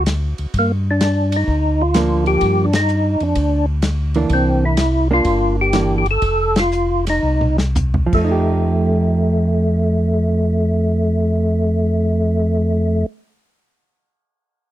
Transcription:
Already playing: D2
0.06 snare, hi-hat pedal, ride
0.38 D2, ride
0.54 G2, kick, ride
0.59 A#3
0.91 D4
1.01 snare, hi-hat pedal, ride
1.32 ride
1.36 D#4
1.48 D2, kick
1.82 F4
1.94 F3 A#3 D4, snare, hi-hat pedal, ride
2.26 G4, ride
2.41 G2, kick, ride
2.65 D4
2.73 D#4, snare, ride
2.88 hi-hat pedal
3.20 F2 D4, ride
3.35 D2, kick, ride
3.82 snare, hi-hat pedal, ride
4.14 E3 A#3 D4, ride
4.29 C2, kick, ride
4.33 C4
4.65 E4
4.77 snare, hi-hat pedal, ride
5.11 A#3 D4 F4
5.25 G1, kick, ride
5.61 G4
5.73 E3 A#3 D4, snare, hi-hat pedal, ride
5.98 G4
6.06 ride
6.11 A4
6.22 F1, kick, ride
6.56 F4, snare, ride
6.72 hi-hat pedal
7.07 D#4, snare, ride
7.23 C2
7.41 mid tom
7.58 snare
7.75 floor tom, hi-hat pedal
7.94 floor tom
8.06 F3
8.13 F2 A3, kick, crash
8.24 D#4
8.31 G4

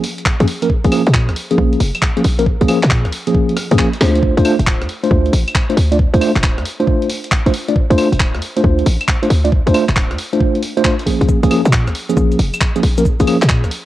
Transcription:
0.04 open hi-hat
0.18 closed hi-hat
0.26 kick, clap
0.40 F2 F3 A#3 C#4 G#4, closed hi-hat
0.48 open hi-hat
0.62 F3 A#3 C#4 A#4, closed hi-hat
0.70 kick
0.84 A#1 F3 A#3 C#4 G#4, closed hi-hat
0.92 F3 A#3 C#4 G#4, open hi-hat, claves
1.07 A#2, closed hi-hat
1.14 kick, clap
1.29 C#2, cross-stick, closed hi-hat
1.36 open hi-hat
1.51 F3 A#3 C#4 G#4, closed hi-hat
1.58 A#1, kick
1.73 closed hi-hat
1.80 F1, open hi-hat
1.95 closed hi-hat, claves
2.02 kick, clap
2.17 F3 A#3 C#4 G#4, closed hi-hat
2.24 A#1, open hi-hat
2.39 F3 A#3 C#4 A#4, closed hi-hat
2.46 kick
2.61 A#1 F3 A#3 C#4 G#4, closed hi-hat
2.68 F3 A#3 C#4 G#4, open hi-hat, claves
2.83 A#2, clap, closed hi-hat
2.90 kick, clap
3.05 C#2, cross-stick, closed hi-hat
3.12 open hi-hat
3.27 F3 A#3 C#4 G#4, closed hi-hat
3.35 kick
3.49 closed hi-hat
3.57 cross-stick, open hi-hat
3.71 F2 F3 A#3 C#4 G#4, closed hi-hat
3.79 F3 A#3 C#4 G#4, kick, clap
3.93 closed hi-hat
4.01 D2 A3 D4 F4 C5, snare, open hi-hat
4.15 closed hi-hat
4.23 kick
4.37 D2 A3 D4 F4 C5, closed hi-hat
4.45 A3 D4 F4 C5, open hi-hat, claves
4.59 D1, closed hi-hat
4.67 kick, clap
4.81 F2, cross-stick, closed hi-hat
4.89 open hi-hat
5.04 A3 D4 F4 C5, closed hi-hat
5.11 D2, kick
5.26 closed hi-hat
5.33 A1, open hi-hat
5.48 closed hi-hat, claves
5.55 kick, clap
5.70 A3 D4 F4 C5, closed hi-hat
5.77 D2, open hi-hat
5.92 A3 D4 F4 D5, closed hi-hat
5.99 kick
6.14 D2 A3 D4 F4 C5, closed hi-hat
6.21 A3 D4 F4 C5, open hi-hat, claves
6.36 D1, clap, closed hi-hat
6.43 kick, clap
6.58 F2, cross-stick, closed hi-hat
6.66 open hi-hat
6.80 A3 D4 F4 C5, closed hi-hat
6.87 kick
7.02 closed hi-hat
7.10 open hi-hat
7.24 closed hi-hat
7.32 kick, clap
7.46 A1 A3 D4 F4 C5, closed hi-hat
7.54 open hi-hat
7.68 A3 D4 F4 D5, closed hi-hat
7.76 kick
7.90 D2 A3 D4 F4 C5, closed hi-hat
7.98 A3 D4 F4 C5, open hi-hat, claves
8.12 D1, closed hi-hat
8.20 kick, clap
8.34 F2, cross-stick, closed hi-hat
8.42 open hi-hat
8.57 A3 D4 F4 C5, closed hi-hat
8.64 D2, kick
8.79 closed hi-hat
8.86 A1, open hi-hat
9.01 closed hi-hat, claves
9.08 kick, clap
9.23 A3 D4 F4 C5, closed hi-hat
9.30 D2, open hi-hat
9.45 A3 D4 F4 D5, closed hi-hat
9.52 kick
9.67 D2 A3 D4 F4 C5, closed hi-hat
9.74 A3 D4 F4 C5, open hi-hat, claves
9.89 D1, clap, closed hi-hat
9.96 kick, clap
10.11 F2, cross-stick, closed hi-hat
10.18 open hi-hat
10.33 A3 D4 F4 C5, closed hi-hat
10.40 kick
10.55 closed hi-hat
10.63 open hi-hat
10.77 A3 D4 F4 C5, closed hi-hat
10.85 A3 D4 F4 C5, kick, clap
10.99 closed hi-hat
11.06 F3 A#3 C#4 G#4, kick, open hi-hat
11.21 A#1, closed hi-hat
11.29 kick, shaker
11.43 A#1 F3 A#3 C#4 G#4, closed hi-hat, shaker
11.51 F3 A#3 C#4 G#4, open hi-hat, claves
11.65 A#2, closed hi-hat, shaker
11.73 kick, clap, shaker
11.87 C#2, cross-stick, closed hi-hat, shaker
11.95 open hi-hat
12.09 F3 A#3 C#4 G#4, closed hi-hat, shaker
12.17 A#1, kick, shaker
12.32 closed hi-hat, shaker
12.39 F1, open hi-hat
12.54 closed hi-hat, claves, shaker
12.61 kick, clap, shaker
12.76 F3 A#3 C#4 G#4, closed hi-hat, shaker
12.83 A#1, open hi-hat
12.98 F3 A#3 C#4 A#4, closed hi-hat, shaker
13.05 kick, shaker
13.20 A#1 F3 A#3 C#4 G#4, closed hi-hat, shaker
13.27 F3 A#3 C#4 G#4, open hi-hat, claves
13.42 A#2, clap, closed hi-hat, shaker
13.49 kick, clap, shaker
13.64 C#2, cross-stick, closed hi-hat, shaker
13.71 open hi-hat

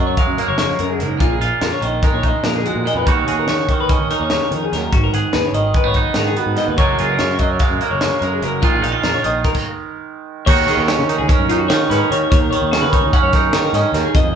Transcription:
Already playing: F#2 F#3 F4
0.07 C#5
0.17 G#3 F5, kick, closed hi-hat
0.27 F#2
0.38 A#3 A#4, closed hi-hat
0.48 F#1 C#5
0.58 F2 C#5, snare, closed hi-hat
0.79 F#2 A#4, closed hi-hat
0.90 G#4
0.99 F#1 G#2 A#4, closed hi-hat
1.19 A#1 A#2 F4, kick, closed hi-hat
1.30 G#4
1.40 A#1 F4 F5, closed hi-hat
1.61 F2 A#4, snare, closed hi-hat
1.73 C#5
1.82 A#1 D#3 D#5, closed hi-hat
2.03 G#3 A#4, kick, closed hi-hat
2.12 A#1 C#5
2.23 D#4 D#5, kick, closed hi-hat
2.43 F2 A#2 A#4, snare, closed hi-hat
2.56 G#4
2.66 G#3 F#4, closed hi-hat
2.75 A#2
2.85 A#2 D#5, closed hi-hat
2.95 F2 B4
3.06 D#2 D#3 C#4 D#4 F#4 C#5, kick, closed hi-hat
3.26 D#2 F#4 G#4, closed hi-hat
3.39 A#4
3.47 D#3 C#5, snare, closed hi-hat
3.68 D#3 D#5, kick, closed hi-hat
3.81 B4
3.89 C#4 D#5, kick, closed hi-hat
3.99 D#3
4.11 D#4 A#4, closed hi-hat
4.20 D#2 C#5
4.30 D#2 C#5, snare, closed hi-hat
4.51 F2 D#3 A#4, closed hi-hat
4.63 G#4
4.72 D#2 F#2 A#4, snare, closed hi-hat
4.93 G#1 G#2 F#4, kick, closed hi-hat
5.04 A#4
5.13 G#1 G#4 F#5, closed hi-hat
5.33 D#2 B4, snare, closed hi-hat
5.45 C#5
5.53 G#1 D#3 D#5, closed hi-hat
5.74 G#3 B4, kick, closed hi-hat
5.84 G#1 B3 C#5
5.94 D#4 D#5, kick, closed hi-hat
6.14 G#2 D#3 A#4, snare, closed hi-hat
6.27 G#4
6.37 B3 F#4, closed hi-hat
6.46 G#2
6.56 G#2 D#5, snare, closed hi-hat
6.68 D#2 B4
6.77 F#1 F#2 F#3 G#3 A#3 F4 C#5, kick, closed hi-hat
6.98 F#1 F4 G#4, closed hi-hat
7.10 A#4
7.19 F#2 C#5, snare, closed hi-hat
7.39 F#2 F#3 D#5, kick, closed hi-hat
7.50 C#5
7.59 G#3 F5, kick, snare, closed hi-hat
7.70 F#2
7.81 A#3 A#4, closed hi-hat
7.91 F#1 C#5
8.01 C#3 C#5, snare, closed hi-hat
8.21 F#2 G#3 A#4, closed hi-hat
8.33 G#4
8.42 F#1 F#2 A#4, closed hi-hat
8.62 A#1 A#2 D#3 G#3 D#4 F4, kick, closed hi-hat
8.74 G#4
8.82 A#1 D#4 F5, closed hi-hat
8.92 F4
9.03 F2 A#4, snare, closed hi-hat
9.14 C#5
9.23 A#1 D#3 D#5, closed hi-hat
9.44 A#4, kick, closed hi-hat
9.54 kick, crash
10.46 D#2 D#3 C#4 D#4 F#4 C#5, kick, crash
10.67 D#3 G#4, snare, closed hi-hat
10.77 D#2 A#4
10.88 C#4 C#5, snare, closed hi-hat
10.99 D#3
11.08 D#4 A#4, closed hi-hat
11.18 D#2 G#4
11.28 C#4 A#4, kick, closed hi-hat
11.39 F#2
11.49 D#4 F4, closed hi-hat
11.58 F#4
11.68 D#3 C#5, snare, closed hi-hat
11.90 G#2 C#4 B4, snare, closed hi-hat
11.99 A#4
12.11 D#2 D#3 C#5, closed hi-hat
12.31 D#2 C#5, kick, closed hi-hat
12.41 A#4
12.51 D#3 C#5, closed hi-hat
12.62 D#2
12.71 C#4 F#4, snare, closed hi-hat
12.81 D#3 B4
12.93 D#4 C#5, kick, closed hi-hat
13.01 D#2
13.13 C#4 F#5, kick, closed hi-hat
13.23 F#2 C#5
13.33 D#4 A#4, kick, snare, closed hi-hat
13.53 D#3 C#5, snare, closed hi-hat
13.65 A#4
13.73 G#2 C#4 D#5, snare, closed hi-hat
13.92 D#2 A#4, snare, closed hi-hat
14.04 G#4
14.15 F2 D#5, kick, closed hi-hat

